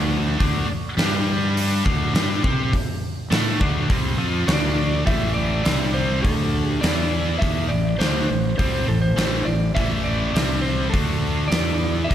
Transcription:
Already playing: D2 D3 A3 D4
0.39 D2 D3 A3 D4, kick, open hi-hat
0.69 muted distorted electric guitar stroke, muted fingered electric bass stroke
0.97 G2 G3 D4 G4, snare, open hi-hat
1.57 open hi-hat
1.85 D2 D3 A3 D4, kick
2.14 G2 G3 D4 G4, snare, open hi-hat
2.43 C3 C4 G4 C5, kick
2.73 muted fingered electric bass stroke, muted distorted electric guitar stroke, kick, open hi-hat
3.31 A2 A3 E4 A4, snare, open hi-hat
3.60 D2 D3 A3 D4, kick
3.89 C2 C3 G3 C4, kick, open hi-hat
4.18 F2 F3 C4 F4
4.47 D2 D3 A3 D4 D5, snare, open hi-hat
5.05 A1 A2 E3 A3 E5, kick, open hi-hat
5.34 D5
5.64 C2 C3 G3 C4, snare, open hi-hat
5.94 C5
6.22 D2 D3 A3 D4 A4, kick, open hi-hat
6.69 G4
6.81 E2 E3 B3 E4 D5, snare, open hi-hat
7.39 D#2 D#3 A#3 D#4 E5, kick, open hi-hat
7.69 A1 A2 E3 D5
7.99 D2 D3 A3 D4 C5, snare, open hi-hat
8.28 A1 A2 E3
8.58 C2 C3 G3 C4 C5, kick, open hi-hat
8.87 A1 A2 E3 A4
9.02 C5
9.17 A1 A2 E3 A3, snare, open hi-hat
9.45 A1 A2 E3 D5
9.75 A1 A2 E3 A3 E5, kick, open hi-hat
10.04 D5
10.34 C2 C3 G3 C4, snare, open hi-hat
10.62 C5
10.90 D3 A3 A4
10.94 D2 D4, kick, open hi-hat
11.48 E3 B3 E4 D5, open hi-hat
11.52 E2, snare
12.04 E5
12.08 D#2 D#3 A#3 D#4, kick, open hi-hat

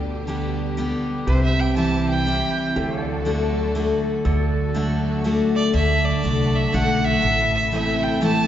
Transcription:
Already playing: D2 B2 D3 G3 D4 G4 B4 D5
0.27 D3 G3 B3 G4
0.77 D3 G3 B3 G4
1.27 C2 C3 E3 G3 E4 G4 B4 C5 E5
1.43 E5
1.48 C5
1.60 G5
1.76 E3 G3 C4 E4 A5
2.09 G5
2.26 E3 G3 C4 E4
2.76 D2 D3 F#3 A3 F#4 G4 A4 C5 E5
3.01 A4 D5 F#5
3.25 D3 A3 D4 F#4
3.75 D3 A3 D4 F#4
4.25 D2 D3 F#3 A3 F#4 A4 D5 F#5
4.75 D3 A3 D4 F#4
5.24 D3 A3 D4 F#4
5.55 D5
5.74 D2 D3 F#3 A3 F#4 A4 E5
6.04 D5
6.23 C2 D3 A3 D4 F#4
6.55 E5
6.72 B1 D3 A3 D4 F#4 F#5
7.05 E5
7.22 A1 A2 C3 E3 E4 A4
7.54 E5
7.72 E3 A3 C4 E4 E5
8.03 G5
8.21 E3 A3 C4 E4 A5

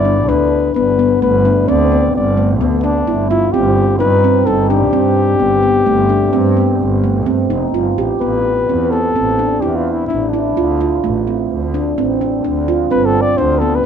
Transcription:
Already playing: G1 D5
0.05 D4
0.29 D2 D4 B4
0.75 G1 B3 B4
0.99 B3
1.22 G1 A3 B4
1.45 D4
1.68 D2 C4 D5
1.92 B3
2.14 G1 D5
2.37 A3
2.61 D2 B3
2.84 D4
3.07 G1 E4
3.31 E4 F4
3.52 G1 C4 G4
3.99 G2 D#4 B4
4.24 C4
4.46 G1 D#4 A4
4.69 D4 G4
4.93 G2 C4
5.39 G1 B3
5.63 B3
5.86 G1 A3
6.09 D4
6.33 G2 C4
6.57 B3
6.80 G1
7.04 A3
7.26 G2 C4
7.50 F1 D#4
7.74 G1 F4
7.98 A1 G4
8.21 A1 B3 B4
8.69 E2 C4
8.91 B3 A4
9.16 A1 C4
9.39 D4
9.61 E2 E4 G4
9.76 F4
9.93 E4
10.07 A1 D4 E4
10.30 D4 E4
10.57 D2 F4
10.81 F4
11.04 A1 A3
11.27 C4
11.51 D2
11.74 D4
11.98 A1 C4
12.21 D4
12.44 D2 D4
12.68 F4
12.91 G1 C4 B4
13.05 A4
13.22 D5
13.37 D2 D4 C5
13.59 B3 A4
13.75 B4

